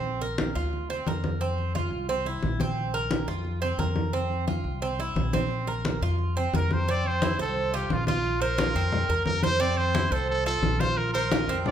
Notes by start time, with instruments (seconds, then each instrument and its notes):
Already playing: upright bass A#1, cuban tres C4
0.04 high conga
0.21 cuban tres A#4, high conga
0.38 high conga
0.55 upright bass D2, cuban tres F4, high conga
0.73 high conga
0.90 cuban tres C4, high conga
1.06 upright bass F2, cuban tres A#4, high conga
1.24 high conga
1.41 cuban tres C4, high conga
1.58 high conga
1.75 cuban tres F4, high conga
1.91 upright bass C2
2.09 cuban tres C4, high conga
2.25 cuban tres E4, high conga
2.43 upright bass A#1, high conga
2.60 cuban tres C4, high conga
2.77 high conga
2.94 cuban tres A#4, high conga
3.11 high conga
3.28 upright bass F2, cuban tres F4, high conga
3.45 high conga
3.62 cuban tres C4, high conga
3.78 upright bass F2, cuban tres A#4, high conga
3.96 high conga
4.13 cuban tres C4, high conga
4.30 high conga
4.48 cuban tres F4, high conga
4.64 upright bass C2
4.82 cuban tres C4, high conga
4.99 cuban tres E4, high conga
5.16 upright bass A#1, high conga
5.33 cuban tres C4, high conga
5.51 high conga
5.67 cuban tres A#4, high conga
5.85 high conga
6.01 upright bass F2, cuban tres F4, high conga
6.19 high conga
6.36 cuban tres C4, high conga
6.53 upright bass F2, cuban tres A#4, trumpet A#4, high conga
6.71 trumpet C5, high conga
6.88 cuban tres C4, trumpet D5, high conga
7.05 trumpet C5, high conga
7.22 cuban tres E4, high conga
7.39 upright bass C2, trumpet A4, cuban tres C5, high conga
7.56 high conga
7.73 cuban tres F4, trumpet G4, high conga
7.90 upright bass A#1, trumpet F4, high conga
8.07 trumpet F4, cuban tres F4, high conga
8.24 high conga
8.41 trumpet A#4, cuban tres C5, high conga
8.58 cuban tres F4, high conga
8.75 upright bass F2, cuban tres C4, high conga
8.92 high conga, low conga
9.09 upright bass E2, cuban tres A#4, high conga
9.25 upright bass F2, trumpet A#4, high conga
9.43 cuban tres C5, trumpet C5, high conga
9.60 cuban tres C4, trumpet D5, high conga
9.77 trumpet C5, high conga
9.95 cuban tres E4, high conga
10.11 upright bass C2, trumpet A4, cuban tres C5, high conga
10.29 trumpet A4, high conga
10.46 cuban tres F4, trumpet A4, high conga
10.62 upright bass A#1, high conga
10.80 cuban tres F4, trumpet C5, high conga
10.97 trumpet A#4, high conga
11.13 trumpet A#4, cuban tres C5, high conga
11.32 cuban tres F4, high conga
11.48 upright bass F2, cuban tres C4, high conga
11.66 trumpet D5, high conga, low conga